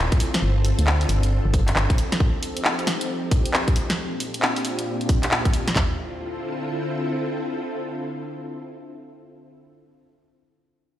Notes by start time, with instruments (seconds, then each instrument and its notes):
Already playing: string machine C4 E4 F4 A4
0.12 kick, closed hi-hat
0.20 open hi-hat
0.34 snare, closed hi-hat
0.42 fm bass G1, string machine D4
0.65 open hi-hat
0.79 fm bass D2, closed hi-hat
0.87 clap
1.01 open hi-hat
1.09 fm bass G1, open hi-hat
1.23 closed hi-hat
1.45 fm bass G1
1.54 kick, open hi-hat
1.68 clap, closed hi-hat
1.76 fm bass G1, clap
1.90 kick, closed hi-hat
1.98 open hi-hat
2.12 snare, closed hi-hat
2.20 string machine F3 C4 D#4 G4, kick
2.43 open hi-hat
2.57 closed hi-hat
2.65 clap
2.79 closed hi-hat
2.87 snare, open hi-hat
3.01 closed hi-hat
3.31 kick, open hi-hat
3.46 closed hi-hat
3.54 clap
3.68 kick, closed hi-hat
3.76 open hi-hat
3.90 snare, closed hi-hat
3.98 string machine A#2 C4 D4 F4 G4
4.20 open hi-hat
4.34 closed hi-hat
4.42 clap
4.56 open hi-hat
4.65 open hi-hat
4.79 closed hi-hat
5.01 closed hi-hat
5.09 kick, open hi-hat
5.23 clap, closed hi-hat
5.31 clap
5.45 kick, closed hi-hat
5.54 open hi-hat
5.68 snare, closed hi-hat
5.76 string machine D3 C4 E4 F4 A4, kick, clap, floor tom